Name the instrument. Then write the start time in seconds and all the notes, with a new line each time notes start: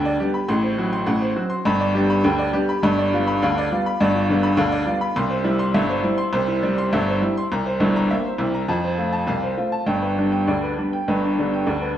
upright piano
Already playing: D2 D3 G5
0.05 D5
0.20 G3 B3 D4 G4
0.34 B5
0.48 A1 A2 C6
0.63 C5
0.78 F#3 C4 F#4
0.93 C6
1.06 A1 A2 F#5
1.21 C5
1.36 F#3 C4 F#4
1.50 C6
1.65 G1 G2 B5
1.80 D5
1.95 G3 B3 D4 G4
2.10 B5
2.24 D2 D3 G5
2.38 D5
2.53 G3 B3 D4 G4
2.69 B5
2.83 G1 G2 B5
2.98 D5
3.13 G3 B3 F4
3.27 B5
3.42 D2 D3 F5
3.58 D5
3.72 G3 B3 F4
3.86 B5
4.01 G1 G2 D5
4.15 F4
4.29 D3 G3 B3
4.43 B5
4.57 D2 D3 F5
4.72 D5
4.86 G3 B3 F4
5.01 B5
5.16 C2 C3 C6
5.30 C5
5.44 G3 C4 E4
5.59 C6
5.74 G1 G2 E5
5.89 C5
6.04 G3 C4 E4
6.18 C6
6.33 C2 C3 C5
6.47 E4
6.63 G3 C4
6.78 C6
6.93 G1 G2 E5
7.07 C5
7.22 G3 C4 E4
7.37 C6
7.52 C2 C3 A#5
7.66 C5
7.80 G1 G2 E4
7.96 A#5
8.11 A#3 C4 E5
8.25 C5
8.38 C2 C3 E4
8.54 A#5
8.68 F2 F3 A5
8.84 C5
8.98 A3 C4 F4
9.13 A5
9.27 C2 C3 F5
9.43 C5
9.58 A3 C4 F4
9.72 A5
9.87 G1 G2 G5
10.02 B4
10.18 G3 B3 D4
10.32 G5
10.47 D2 D3 D5
10.63 B4
10.78 G3 B3 D4
10.93 G5
11.08 G1 G2 B4
11.24 D4
11.39 D3 G3 B3 D4
11.54 G5
11.66 D2 D3 D5
11.82 B4